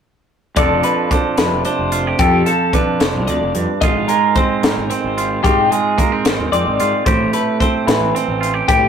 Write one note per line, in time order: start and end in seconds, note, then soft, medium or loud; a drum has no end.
0.56 0.79 F1 medium
0.56 2.19 F2 medium
0.56 0.83 F3 medium
0.56 1.11 D4 medium
0.56 1.92 A4 medium
0.56 0.83 D5 medium
0.56 kick loud
0.56 closed hi-hat medium
0.83 2.46 F3 medium
0.83 1.11 B4 medium
0.83 closed hi-hat medium
1.11 1.64 D4 medium
1.11 1.38 C5 medium
1.11 kick medium
1.11 closed hi-hat medium
1.38 1.49 F2 medium
1.38 2.19 C3 medium
1.38 1.65 B4 medium
1.38 snare loud
1.38 closed hi-hat medium
1.52 1.63 F1 medium
1.65 2.16 D4 medium
1.65 2.20 C5 medium
1.65 closed hi-hat medium
1.79 2.11 F1 medium
1.92 2.07 F4 medium
1.92 closed hi-hat medium
2.07 2.20 G4 soft
2.19 2.41 F2 medium
2.19 3.27 F2 medium
2.19 2.46 G4 medium
2.19 3.79 A4 medium
2.19 kick loud
2.19 closed hi-hat medium
2.46 4.09 F3 medium
2.46 2.73 A4 medium
2.46 closed hi-hat medium
2.73 3.79 D4 medium
2.73 3.00 B4 medium
2.73 kick medium
2.73 closed hi-hat medium
3.00 3.16 F1 medium
3.00 3.27 C5 medium
3.00 snare loud
3.00 closed hi-hat medium
3.14 3.25 C2 medium
3.27 3.38 D2 medium
3.27 3.55 F2 medium
3.27 3.81 D5 medium
3.27 closed hi-hat medium
3.41 3.52 F1 medium
3.54 3.65 F2 medium
3.54 3.82 G2 medium
3.54 closed hi-hat medium
3.81 4.03 G#1 medium
3.81 5.41 G#2 medium
3.81 5.16 F4 medium
3.81 4.08 D#5 medium
3.81 kick loud
3.81 closed hi-hat medium
4.08 5.41 G#3 medium
4.08 4.35 A#4 medium
4.08 closed hi-hat medium
4.36 4.90 C4 medium
4.36 4.63 C5 medium
4.36 kick medium
4.36 closed hi-hat medium
4.63 4.74 G#2 medium
4.63 5.41 D#3 medium
4.63 4.90 A#4 medium
4.63 snare loud
4.63 closed hi-hat medium
4.77 4.88 G#1 medium
4.90 5.97 C4 medium
4.90 5.43 C5 medium
4.90 closed hi-hat medium
5.04 5.36 G#1 medium
5.18 5.44 F4 medium
5.18 closed hi-hat medium
5.44 7.03 G#2 medium
5.44 5.66 G#2 loud
5.44 6.79 F4 medium
5.44 5.71 G4 medium
5.44 kick loud
5.44 closed hi-hat medium
5.71 7.03 G#3 medium
5.71 5.98 G#4 medium
5.71 closed hi-hat medium
5.98 6.12 A#3 medium
5.98 6.25 A#4 medium
5.98 kick medium
5.98 closed hi-hat medium
6.12 6.51 C4 soft
6.25 6.41 G#1 medium
6.25 7.03 D#3 medium
6.25 6.52 C5 medium
6.25 snare loud
6.25 closed hi-hat medium
6.39 6.50 D#2 medium
6.52 6.63 F2 medium
6.52 7.61 C4 medium
6.52 7.06 D5 medium
6.52 closed hi-hat medium
6.66 6.77 G#1 medium
6.80 6.90 G#2 medium
6.80 7.06 F4 medium
6.80 closed hi-hat medium
7.06 7.28 A1 medium
7.06 8.65 A2 medium
7.06 8.40 G4 medium
7.06 7.33 C5 medium
7.06 kick loud
7.06 closed hi-hat medium
7.33 8.65 A3 medium
7.33 7.60 B4 medium
7.33 closed hi-hat medium
7.60 8.14 C4 medium
7.60 7.87 C5 medium
7.60 kick medium
7.60 closed hi-hat medium
7.87 7.98 A2 medium
7.87 8.88 E3 medium
7.87 8.15 B4 medium
7.87 snare loud
7.87 closed hi-hat medium
8.01 8.12 A1 medium
8.15 8.88 C4 medium
8.15 8.69 C5 medium
8.15 closed hi-hat medium
8.28 8.60 A1 medium
8.41 8.54 F4 medium
8.41 closed hi-hat medium
8.54 8.67 G4 soft
8.68 8.88 A2 medium
8.68 8.88 G4 medium
8.68 kick loud
8.68 closed hi-hat medium